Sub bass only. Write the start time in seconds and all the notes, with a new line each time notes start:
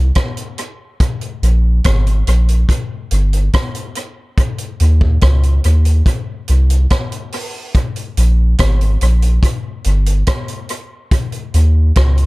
Already playing: C2
1.42 A#1
1.86 G#1
2.27 A#1
3.11 G1
4.80 D#2
5.23 C#2
5.65 D#2
6.49 C2
8.17 A#1
8.60 G#1
9.02 A#1
9.85 G1
11.54 D#2
11.97 C#2